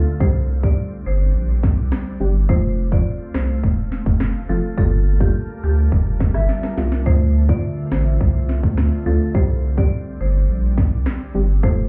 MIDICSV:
0, 0, Header, 1, 7, 480
1, 0, Start_track
1, 0, Tempo, 571429
1, 172, Time_signature, 4, 2, 24, 8
1, 9985, End_track
2, 0, Start_track
2, 0, Title_t, "Nylon-string guitar"
2, 0, Program_c, 0, 24
2, 5333, Note_on_c, 0, 76, 70
2, 5452, Note_off_c, 0, 76, 0
2, 5452, Note_on_c, 0, 74, 81
2, 5566, Note_off_c, 0, 74, 0
2, 5573, Note_on_c, 0, 70, 74
2, 5915, Note_off_c, 0, 70, 0
2, 9985, End_track
3, 0, Start_track
3, 0, Title_t, "Marimba"
3, 0, Program_c, 1, 12
3, 172, Note_on_c, 1, 72, 91
3, 380, Note_off_c, 1, 72, 0
3, 534, Note_on_c, 1, 74, 73
3, 637, Note_off_c, 1, 74, 0
3, 894, Note_on_c, 1, 72, 80
3, 997, Note_off_c, 1, 72, 0
3, 2093, Note_on_c, 1, 72, 101
3, 2301, Note_off_c, 1, 72, 0
3, 2455, Note_on_c, 1, 74, 84
3, 2558, Note_off_c, 1, 74, 0
3, 2813, Note_on_c, 1, 72, 77
3, 2917, Note_off_c, 1, 72, 0
3, 3774, Note_on_c, 1, 69, 76
3, 3878, Note_off_c, 1, 69, 0
3, 4015, Note_on_c, 1, 69, 92
3, 4222, Note_off_c, 1, 69, 0
3, 4374, Note_on_c, 1, 67, 75
3, 4477, Note_off_c, 1, 67, 0
3, 4734, Note_on_c, 1, 67, 83
3, 4837, Note_off_c, 1, 67, 0
3, 5931, Note_on_c, 1, 72, 107
3, 6140, Note_off_c, 1, 72, 0
3, 6291, Note_on_c, 1, 74, 82
3, 6396, Note_off_c, 1, 74, 0
3, 6651, Note_on_c, 1, 72, 77
3, 6756, Note_off_c, 1, 72, 0
3, 7612, Note_on_c, 1, 69, 80
3, 7716, Note_off_c, 1, 69, 0
3, 7851, Note_on_c, 1, 72, 89
3, 8060, Note_off_c, 1, 72, 0
3, 8213, Note_on_c, 1, 74, 77
3, 8317, Note_off_c, 1, 74, 0
3, 8574, Note_on_c, 1, 72, 80
3, 8677, Note_off_c, 1, 72, 0
3, 9772, Note_on_c, 1, 72, 103
3, 9981, Note_off_c, 1, 72, 0
3, 9985, End_track
4, 0, Start_track
4, 0, Title_t, "Ambient pad"
4, 0, Program_c, 2, 92
4, 0, Note_on_c, 2, 50, 82
4, 0, Note_on_c, 2, 57, 78
4, 0, Note_on_c, 2, 60, 75
4, 0, Note_on_c, 2, 65, 94
4, 0, Note_on_c, 2, 76, 77
4, 152, Note_off_c, 2, 50, 0
4, 152, Note_off_c, 2, 57, 0
4, 152, Note_off_c, 2, 65, 0
4, 152, Note_off_c, 2, 76, 0
4, 171, Note_on_c, 2, 62, 90
4, 172, Note_on_c, 2, 55, 83
4, 2058, Note_off_c, 2, 60, 0
4, 2072, Note_off_c, 2, 62, 0
4, 2073, Note_off_c, 2, 55, 0
4, 2092, Note_on_c, 2, 57, 81
4, 2093, Note_on_c, 2, 60, 77
4, 2093, Note_on_c, 2, 65, 90
4, 3993, Note_off_c, 2, 57, 0
4, 3993, Note_off_c, 2, 60, 0
4, 4010, Note_on_c, 2, 55, 80
4, 4011, Note_on_c, 2, 62, 74
4, 4011, Note_on_c, 2, 70, 91
4, 4011, Note_on_c, 2, 81, 74
4, 5899, Note_off_c, 2, 65, 0
4, 5912, Note_off_c, 2, 55, 0
4, 5912, Note_off_c, 2, 62, 0
4, 5912, Note_off_c, 2, 70, 0
4, 5912, Note_off_c, 2, 81, 0
4, 5931, Note_on_c, 2, 50, 81
4, 5931, Note_on_c, 2, 57, 76
4, 5931, Note_on_c, 2, 60, 76
4, 5931, Note_on_c, 2, 65, 91
4, 5931, Note_on_c, 2, 76, 75
4, 7832, Note_off_c, 2, 50, 0
4, 7832, Note_off_c, 2, 57, 0
4, 7832, Note_off_c, 2, 65, 0
4, 7832, Note_off_c, 2, 76, 0
4, 7853, Note_on_c, 2, 62, 88
4, 7854, Note_on_c, 2, 55, 82
4, 9753, Note_off_c, 2, 62, 0
4, 9754, Note_off_c, 2, 55, 0
4, 9771, Note_on_c, 2, 57, 82
4, 9771, Note_on_c, 2, 65, 92
4, 9985, Note_off_c, 2, 57, 0
4, 9985, Note_off_c, 2, 60, 0
4, 9985, Note_off_c, 2, 65, 0
4, 9985, End_track
5, 0, Start_track
5, 0, Title_t, "Synth pluck"
5, 0, Program_c, 3, 84
5, 168, Note_on_c, 3, 55, 95
5, 169, Note_on_c, 3, 60, 83
5, 172, Note_on_c, 3, 62, 81
5, 173, Note_on_c, 3, 67, 100
5, 501, Note_off_c, 3, 55, 0
5, 502, Note_off_c, 3, 60, 0
5, 503, Note_off_c, 3, 62, 0
5, 504, Note_off_c, 3, 67, 0
5, 530, Note_on_c, 3, 55, 74
5, 531, Note_on_c, 3, 60, 66
5, 533, Note_on_c, 3, 62, 65
5, 535, Note_on_c, 3, 67, 84
5, 658, Note_off_c, 3, 55, 0
5, 659, Note_off_c, 3, 60, 0
5, 659, Note_off_c, 3, 62, 0
5, 660, Note_off_c, 3, 67, 0
5, 1849, Note_on_c, 3, 55, 77
5, 1851, Note_on_c, 3, 60, 73
5, 1852, Note_on_c, 3, 62, 71
5, 1855, Note_on_c, 3, 67, 89
5, 1977, Note_off_c, 3, 55, 0
5, 1979, Note_off_c, 3, 60, 0
5, 1979, Note_off_c, 3, 62, 0
5, 1980, Note_off_c, 3, 67, 0
5, 2089, Note_on_c, 3, 53, 91
5, 2091, Note_on_c, 3, 57, 87
5, 2092, Note_on_c, 3, 60, 86
5, 2094, Note_on_c, 3, 65, 105
5, 2422, Note_off_c, 3, 53, 0
5, 2423, Note_off_c, 3, 57, 0
5, 2423, Note_off_c, 3, 60, 0
5, 2424, Note_off_c, 3, 65, 0
5, 2449, Note_on_c, 3, 53, 75
5, 2451, Note_on_c, 3, 57, 68
5, 2452, Note_on_c, 3, 60, 66
5, 2454, Note_on_c, 3, 65, 82
5, 2578, Note_off_c, 3, 53, 0
5, 2578, Note_off_c, 3, 57, 0
5, 2579, Note_off_c, 3, 60, 0
5, 2580, Note_off_c, 3, 65, 0
5, 3771, Note_on_c, 3, 53, 78
5, 3772, Note_on_c, 3, 57, 70
5, 3774, Note_on_c, 3, 60, 74
5, 3775, Note_on_c, 3, 65, 89
5, 3898, Note_off_c, 3, 53, 0
5, 3899, Note_off_c, 3, 57, 0
5, 3900, Note_off_c, 3, 60, 0
5, 3901, Note_off_c, 3, 65, 0
5, 4010, Note_on_c, 3, 55, 92
5, 4012, Note_on_c, 3, 58, 85
5, 4014, Note_on_c, 3, 62, 86
5, 4016, Note_on_c, 3, 65, 104
5, 4342, Note_off_c, 3, 55, 0
5, 4343, Note_off_c, 3, 58, 0
5, 4344, Note_off_c, 3, 62, 0
5, 4345, Note_off_c, 3, 65, 0
5, 4369, Note_on_c, 3, 55, 75
5, 4371, Note_on_c, 3, 58, 65
5, 4373, Note_on_c, 3, 62, 68
5, 4374, Note_on_c, 3, 65, 81
5, 4497, Note_off_c, 3, 55, 0
5, 4499, Note_off_c, 3, 58, 0
5, 4499, Note_off_c, 3, 62, 0
5, 4500, Note_off_c, 3, 65, 0
5, 5688, Note_on_c, 3, 55, 76
5, 5690, Note_on_c, 3, 58, 73
5, 5692, Note_on_c, 3, 62, 74
5, 5694, Note_on_c, 3, 65, 89
5, 5817, Note_off_c, 3, 55, 0
5, 5818, Note_off_c, 3, 58, 0
5, 5819, Note_off_c, 3, 62, 0
5, 5820, Note_off_c, 3, 65, 0
5, 5928, Note_on_c, 3, 57, 93
5, 5930, Note_on_c, 3, 60, 84
5, 5931, Note_on_c, 3, 62, 83
5, 5933, Note_on_c, 3, 65, 101
5, 6261, Note_off_c, 3, 57, 0
5, 6262, Note_off_c, 3, 60, 0
5, 6263, Note_off_c, 3, 62, 0
5, 6264, Note_off_c, 3, 65, 0
5, 6289, Note_on_c, 3, 57, 71
5, 6291, Note_on_c, 3, 60, 66
5, 6293, Note_on_c, 3, 62, 69
5, 6294, Note_on_c, 3, 65, 84
5, 6417, Note_off_c, 3, 57, 0
5, 6419, Note_off_c, 3, 60, 0
5, 6419, Note_off_c, 3, 62, 0
5, 6420, Note_off_c, 3, 65, 0
5, 7609, Note_on_c, 3, 57, 81
5, 7611, Note_on_c, 3, 60, 73
5, 7612, Note_on_c, 3, 62, 71
5, 7614, Note_on_c, 3, 65, 91
5, 7737, Note_off_c, 3, 57, 0
5, 7738, Note_off_c, 3, 60, 0
5, 7739, Note_off_c, 3, 62, 0
5, 7740, Note_off_c, 3, 65, 0
5, 7849, Note_on_c, 3, 55, 95
5, 7850, Note_on_c, 3, 60, 85
5, 7852, Note_on_c, 3, 62, 83
5, 7854, Note_on_c, 3, 67, 104
5, 8182, Note_off_c, 3, 55, 0
5, 8182, Note_off_c, 3, 60, 0
5, 8183, Note_off_c, 3, 62, 0
5, 8184, Note_off_c, 3, 67, 0
5, 8208, Note_on_c, 3, 55, 74
5, 8210, Note_on_c, 3, 60, 66
5, 8213, Note_on_c, 3, 62, 67
5, 8213, Note_on_c, 3, 67, 83
5, 8337, Note_off_c, 3, 55, 0
5, 8338, Note_off_c, 3, 60, 0
5, 8339, Note_off_c, 3, 62, 0
5, 8340, Note_off_c, 3, 67, 0
5, 9529, Note_on_c, 3, 55, 79
5, 9531, Note_on_c, 3, 60, 73
5, 9532, Note_on_c, 3, 62, 74
5, 9535, Note_on_c, 3, 67, 89
5, 9658, Note_off_c, 3, 55, 0
5, 9658, Note_off_c, 3, 60, 0
5, 9659, Note_off_c, 3, 62, 0
5, 9660, Note_off_c, 3, 67, 0
5, 9769, Note_on_c, 3, 57, 92
5, 9772, Note_on_c, 3, 60, 83
5, 9772, Note_on_c, 3, 65, 82
5, 9774, Note_on_c, 3, 69, 105
5, 9985, Note_off_c, 3, 57, 0
5, 9985, Note_off_c, 3, 60, 0
5, 9985, Note_off_c, 3, 65, 0
5, 9985, Note_off_c, 3, 69, 0
5, 9985, End_track
6, 0, Start_track
6, 0, Title_t, "Sub bass"
6, 0, Program_c, 4, 38
6, 172, Note_on_c, 4, 36, 109
6, 618, Note_off_c, 4, 36, 0
6, 892, Note_on_c, 4, 31, 94
6, 1109, Note_off_c, 4, 31, 0
6, 1132, Note_on_c, 4, 34, 95
6, 1459, Note_off_c, 4, 34, 0
6, 1492, Note_on_c, 4, 36, 91
6, 1600, Note_off_c, 4, 36, 0
6, 1850, Note_on_c, 4, 31, 95
6, 2068, Note_off_c, 4, 31, 0
6, 2092, Note_on_c, 4, 29, 112
6, 2539, Note_off_c, 4, 29, 0
6, 2812, Note_on_c, 4, 36, 92
6, 3029, Note_off_c, 4, 36, 0
6, 3054, Note_on_c, 4, 28, 89
6, 3379, Note_off_c, 4, 28, 0
6, 3413, Note_on_c, 4, 29, 97
6, 3629, Note_off_c, 4, 29, 0
6, 3772, Note_on_c, 4, 29, 89
6, 3881, Note_off_c, 4, 29, 0
6, 4012, Note_on_c, 4, 31, 107
6, 4458, Note_off_c, 4, 31, 0
6, 4732, Note_on_c, 4, 38, 97
6, 4949, Note_off_c, 4, 38, 0
6, 4974, Note_on_c, 4, 29, 92
6, 5299, Note_off_c, 4, 29, 0
6, 5332, Note_on_c, 4, 31, 88
6, 5440, Note_off_c, 4, 31, 0
6, 5692, Note_on_c, 4, 36, 99
6, 5931, Note_on_c, 4, 38, 112
6, 5944, Note_off_c, 4, 36, 0
6, 6378, Note_off_c, 4, 38, 0
6, 6652, Note_on_c, 4, 33, 96
6, 6869, Note_off_c, 4, 33, 0
6, 6894, Note_on_c, 4, 36, 97
6, 7219, Note_off_c, 4, 36, 0
6, 7253, Note_on_c, 4, 38, 91
6, 7470, Note_off_c, 4, 38, 0
6, 7611, Note_on_c, 4, 38, 89
6, 7720, Note_off_c, 4, 38, 0
6, 7852, Note_on_c, 4, 36, 104
6, 8298, Note_off_c, 4, 36, 0
6, 8571, Note_on_c, 4, 31, 96
6, 8789, Note_off_c, 4, 31, 0
6, 8811, Note_on_c, 4, 34, 95
6, 9138, Note_off_c, 4, 34, 0
6, 9172, Note_on_c, 4, 36, 88
6, 9280, Note_off_c, 4, 36, 0
6, 9532, Note_on_c, 4, 31, 95
6, 9749, Note_off_c, 4, 31, 0
6, 9771, Note_on_c, 4, 29, 111
6, 9985, Note_off_c, 4, 29, 0
6, 9985, End_track
7, 0, Start_track
7, 0, Title_t, "Drums"
7, 172, Note_on_c, 9, 36, 108
7, 256, Note_off_c, 9, 36, 0
7, 533, Note_on_c, 9, 36, 91
7, 617, Note_off_c, 9, 36, 0
7, 1372, Note_on_c, 9, 36, 102
7, 1373, Note_on_c, 9, 38, 67
7, 1456, Note_off_c, 9, 36, 0
7, 1457, Note_off_c, 9, 38, 0
7, 1611, Note_on_c, 9, 38, 105
7, 1612, Note_on_c, 9, 37, 82
7, 1695, Note_off_c, 9, 38, 0
7, 1696, Note_off_c, 9, 37, 0
7, 2092, Note_on_c, 9, 36, 102
7, 2176, Note_off_c, 9, 36, 0
7, 2453, Note_on_c, 9, 36, 94
7, 2537, Note_off_c, 9, 36, 0
7, 2809, Note_on_c, 9, 38, 112
7, 2811, Note_on_c, 9, 37, 94
7, 2893, Note_off_c, 9, 38, 0
7, 2895, Note_off_c, 9, 37, 0
7, 3054, Note_on_c, 9, 36, 84
7, 3138, Note_off_c, 9, 36, 0
7, 3292, Note_on_c, 9, 38, 67
7, 3376, Note_off_c, 9, 38, 0
7, 3412, Note_on_c, 9, 36, 86
7, 3496, Note_off_c, 9, 36, 0
7, 3530, Note_on_c, 9, 38, 101
7, 3531, Note_on_c, 9, 37, 80
7, 3614, Note_off_c, 9, 38, 0
7, 3615, Note_off_c, 9, 37, 0
7, 4012, Note_on_c, 9, 36, 105
7, 4096, Note_off_c, 9, 36, 0
7, 4372, Note_on_c, 9, 36, 88
7, 4456, Note_off_c, 9, 36, 0
7, 4974, Note_on_c, 9, 36, 84
7, 5058, Note_off_c, 9, 36, 0
7, 5212, Note_on_c, 9, 36, 97
7, 5212, Note_on_c, 9, 38, 68
7, 5296, Note_off_c, 9, 36, 0
7, 5296, Note_off_c, 9, 38, 0
7, 5329, Note_on_c, 9, 37, 92
7, 5413, Note_off_c, 9, 37, 0
7, 5451, Note_on_c, 9, 38, 55
7, 5535, Note_off_c, 9, 38, 0
7, 5571, Note_on_c, 9, 38, 64
7, 5655, Note_off_c, 9, 38, 0
7, 5692, Note_on_c, 9, 38, 87
7, 5776, Note_off_c, 9, 38, 0
7, 5812, Note_on_c, 9, 38, 87
7, 5896, Note_off_c, 9, 38, 0
7, 5931, Note_on_c, 9, 36, 106
7, 6015, Note_off_c, 9, 36, 0
7, 6292, Note_on_c, 9, 36, 93
7, 6376, Note_off_c, 9, 36, 0
7, 6649, Note_on_c, 9, 38, 109
7, 6651, Note_on_c, 9, 37, 92
7, 6733, Note_off_c, 9, 38, 0
7, 6735, Note_off_c, 9, 37, 0
7, 6894, Note_on_c, 9, 36, 85
7, 6978, Note_off_c, 9, 36, 0
7, 7133, Note_on_c, 9, 38, 66
7, 7217, Note_off_c, 9, 38, 0
7, 7253, Note_on_c, 9, 36, 90
7, 7337, Note_off_c, 9, 36, 0
7, 7371, Note_on_c, 9, 38, 103
7, 7372, Note_on_c, 9, 37, 78
7, 7455, Note_off_c, 9, 38, 0
7, 7456, Note_off_c, 9, 37, 0
7, 7851, Note_on_c, 9, 36, 103
7, 7935, Note_off_c, 9, 36, 0
7, 8212, Note_on_c, 9, 36, 92
7, 8296, Note_off_c, 9, 36, 0
7, 9052, Note_on_c, 9, 36, 101
7, 9052, Note_on_c, 9, 38, 69
7, 9136, Note_off_c, 9, 36, 0
7, 9136, Note_off_c, 9, 38, 0
7, 9291, Note_on_c, 9, 38, 105
7, 9292, Note_on_c, 9, 37, 81
7, 9375, Note_off_c, 9, 38, 0
7, 9376, Note_off_c, 9, 37, 0
7, 9772, Note_on_c, 9, 36, 105
7, 9856, Note_off_c, 9, 36, 0
7, 9985, End_track
0, 0, End_of_file